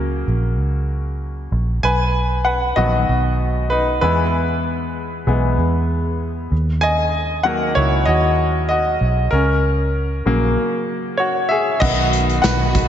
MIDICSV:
0, 0, Header, 1, 5, 480
1, 0, Start_track
1, 0, Key_signature, 5, "major"
1, 0, Tempo, 624350
1, 1411, Time_signature, 4, 2, 24, 8
1, 9902, End_track
2, 0, Start_track
2, 0, Title_t, "Grand piano"
2, 0, Program_c, 0, 0
2, 0, Control_c, 0, 64, 127
2, 0, Note_on_c, 0, 49, 45
2, 0, Note_on_c, 0, 54, 43
2, 0, Note_on_c, 0, 58, 56
2, 0, Note_on_c, 0, 61, 54
2, 0, Note_on_c, 0, 70, 63
2, 176, Note_off_c, 0, 70, 0
2, 185, Note_off_c, 0, 61, 0
2, 1409, Note_on_c, 0, 80, 86
2, 1419, Note_on_c, 0, 71, 66
2, 1421, Control_c, 0, 64, 0
2, 1425, Note_off_c, 0, 49, 0
2, 1426, Note_off_c, 0, 54, 0
2, 1428, Note_off_c, 0, 58, 0
2, 1545, Control_c, 0, 64, 127
2, 1864, Note_off_c, 0, 71, 0
2, 1880, Note_on_c, 0, 78, 74
2, 1893, Note_on_c, 0, 71, 53
2, 1905, Note_off_c, 0, 80, 0
2, 2116, Note_off_c, 0, 71, 0
2, 2121, Note_on_c, 0, 75, 77
2, 2124, Note_on_c, 0, 51, 45
2, 2127, Note_on_c, 0, 54, 44
2, 2133, Note_off_c, 0, 78, 0
2, 2133, Note_on_c, 0, 66, 64
2, 2134, Note_on_c, 0, 59, 52
2, 2817, Note_off_c, 0, 51, 0
2, 2819, Note_off_c, 0, 54, 0
2, 2822, Note_off_c, 0, 59, 0
2, 2822, Note_off_c, 0, 66, 0
2, 2843, Note_on_c, 0, 71, 72
2, 2859, Note_on_c, 0, 63, 54
2, 2868, Note_off_c, 0, 75, 0
2, 2898, Note_off_c, 0, 71, 0
2, 2913, Note_off_c, 0, 63, 0
2, 3086, Note_on_c, 0, 71, 81
2, 3088, Note_on_c, 0, 52, 47
2, 3095, Note_on_c, 0, 56, 44
2, 3099, Control_c, 0, 64, 0
2, 3099, Note_on_c, 0, 59, 55
2, 3100, Note_on_c, 0, 64, 52
2, 3247, Control_c, 0, 64, 127
2, 3409, Note_off_c, 0, 52, 0
2, 3412, Note_off_c, 0, 56, 0
2, 3414, Note_off_c, 0, 59, 0
2, 4017, Note_off_c, 0, 71, 0
2, 4025, Note_off_c, 0, 64, 0
2, 4051, Note_on_c, 0, 56, 41
2, 4052, Note_on_c, 0, 52, 41
2, 4057, Note_on_c, 0, 59, 50
2, 4267, Note_off_c, 0, 56, 0
2, 4268, Note_off_c, 0, 52, 0
2, 4270, Note_off_c, 0, 59, 0
2, 5022, Control_c, 0, 64, 0
2, 5132, Control_c, 0, 64, 127
2, 5237, Note_on_c, 0, 80, 93
2, 5252, Note_on_c, 0, 75, 78
2, 5700, Note_off_c, 0, 75, 0
2, 5715, Note_on_c, 0, 78, 82
2, 5724, Note_on_c, 0, 51, 46
2, 5729, Note_on_c, 0, 54, 45
2, 5734, Note_on_c, 0, 58, 52
2, 5736, Note_on_c, 0, 70, 62
2, 5738, Note_off_c, 0, 80, 0
2, 5771, Note_off_c, 0, 78, 0
2, 5789, Note_off_c, 0, 70, 0
2, 5959, Note_on_c, 0, 73, 82
2, 5976, Note_on_c, 0, 64, 63
2, 6014, Note_off_c, 0, 73, 0
2, 6029, Note_off_c, 0, 64, 0
2, 6046, Note_off_c, 0, 51, 0
2, 6049, Note_off_c, 0, 54, 0
2, 6051, Note_off_c, 0, 58, 0
2, 6193, Note_on_c, 0, 75, 79
2, 6214, Note_on_c, 0, 66, 65
2, 6661, Note_off_c, 0, 66, 0
2, 6666, Note_off_c, 0, 75, 0
2, 6678, Note_on_c, 0, 75, 76
2, 6693, Note_on_c, 0, 66, 61
2, 7140, Note_off_c, 0, 66, 0
2, 7155, Note_on_c, 0, 70, 70
2, 7174, Note_on_c, 0, 61, 53
2, 7178, Note_off_c, 0, 75, 0
2, 7179, Control_c, 0, 64, 0
2, 7303, Control_c, 0, 64, 127
2, 7884, Note_on_c, 0, 49, 49
2, 7888, Note_on_c, 0, 54, 43
2, 7894, Note_on_c, 0, 58, 58
2, 8574, Note_off_c, 0, 49, 0
2, 8576, Note_off_c, 0, 54, 0
2, 8579, Note_off_c, 0, 58, 0
2, 8591, Note_on_c, 0, 73, 66
2, 8608, Note_on_c, 0, 66, 60
2, 8647, Note_off_c, 0, 73, 0
2, 8662, Note_off_c, 0, 66, 0
2, 8808, Note_off_c, 0, 70, 0
2, 8818, Note_off_c, 0, 61, 0
2, 8831, Note_on_c, 0, 76, 74
2, 8849, Note_on_c, 0, 68, 62
2, 9071, Note_off_c, 0, 68, 0
2, 9072, Note_on_c, 0, 75, 94
2, 9080, Note_on_c, 0, 51, 52
2, 9083, Note_on_c, 0, 54, 47
2, 9086, Note_off_c, 0, 76, 0
2, 9089, Note_on_c, 0, 66, 77
2, 9091, Note_on_c, 0, 59, 63
2, 9094, Control_c, 0, 64, 0
2, 9244, Control_c, 0, 64, 127
2, 9535, Note_off_c, 0, 66, 0
2, 9546, Note_on_c, 0, 78, 82
2, 9566, Note_on_c, 0, 71, 71
2, 9572, Note_off_c, 0, 75, 0
2, 9902, Note_off_c, 0, 51, 0
2, 9902, Note_off_c, 0, 54, 0
2, 9902, Note_off_c, 0, 59, 0
2, 9902, Note_off_c, 0, 71, 0
2, 9902, Note_off_c, 0, 78, 0
2, 9902, End_track
3, 0, Start_track
3, 0, Title_t, "String section"
3, 0, Program_c, 1, 48
3, 9081, Note_on_c, 1, 66, 74
3, 9083, Note_on_c, 1, 59, 63
3, 9087, Note_on_c, 1, 51, 68
3, 9902, Note_off_c, 1, 51, 0
3, 9902, Note_off_c, 1, 59, 0
3, 9902, Note_off_c, 1, 66, 0
3, 9902, End_track
4, 0, Start_track
4, 0, Title_t, "Fingered electric bass"
4, 0, Program_c, 2, 33
4, 0, Note_on_c, 2, 37, 85
4, 181, Note_off_c, 2, 37, 0
4, 211, Note_on_c, 2, 34, 71
4, 451, Note_off_c, 2, 34, 0
4, 451, Note_on_c, 2, 37, 85
4, 1140, Note_off_c, 2, 37, 0
4, 1166, Note_on_c, 2, 34, 68
4, 1392, Note_off_c, 2, 34, 0
4, 1409, Note_on_c, 2, 35, 89
4, 2099, Note_off_c, 2, 35, 0
4, 2128, Note_on_c, 2, 34, 71
4, 2353, Note_off_c, 2, 34, 0
4, 2373, Note_on_c, 2, 35, 87
4, 3061, Note_off_c, 2, 35, 0
4, 3093, Note_on_c, 2, 40, 77
4, 4021, Note_off_c, 2, 40, 0
4, 4049, Note_on_c, 2, 35, 87
4, 4273, Note_off_c, 2, 35, 0
4, 4286, Note_on_c, 2, 40, 91
4, 4977, Note_off_c, 2, 40, 0
4, 5008, Note_on_c, 2, 39, 81
4, 5938, Note_off_c, 2, 39, 0
4, 5967, Note_on_c, 2, 37, 72
4, 6191, Note_off_c, 2, 37, 0
4, 6209, Note_on_c, 2, 39, 85
4, 6898, Note_off_c, 2, 39, 0
4, 6926, Note_on_c, 2, 35, 74
4, 7150, Note_off_c, 2, 35, 0
4, 7166, Note_on_c, 2, 37, 84
4, 7856, Note_off_c, 2, 37, 0
4, 7886, Note_on_c, 2, 34, 72
4, 8110, Note_off_c, 2, 34, 0
4, 9083, Note_on_c, 2, 35, 97
4, 9532, Note_off_c, 2, 35, 0
4, 9562, Note_on_c, 2, 35, 80
4, 9902, Note_off_c, 2, 35, 0
4, 9902, End_track
5, 0, Start_track
5, 0, Title_t, "Drums"
5, 9084, Note_on_c, 9, 36, 110
5, 9084, Note_on_c, 9, 49, 100
5, 9161, Note_off_c, 9, 36, 0
5, 9161, Note_off_c, 9, 49, 0
5, 9326, Note_on_c, 9, 42, 69
5, 9403, Note_off_c, 9, 42, 0
5, 9452, Note_on_c, 9, 42, 45
5, 9529, Note_off_c, 9, 42, 0
5, 9562, Note_on_c, 9, 42, 86
5, 9564, Note_on_c, 9, 38, 101
5, 9564, Note_on_c, 9, 54, 77
5, 9572, Note_on_c, 9, 39, 82
5, 9639, Note_off_c, 9, 42, 0
5, 9641, Note_off_c, 9, 38, 0
5, 9641, Note_off_c, 9, 54, 0
5, 9649, Note_off_c, 9, 39, 0
5, 9801, Note_on_c, 9, 36, 93
5, 9801, Note_on_c, 9, 42, 68
5, 9878, Note_off_c, 9, 36, 0
5, 9878, Note_off_c, 9, 42, 0
5, 9902, End_track
0, 0, End_of_file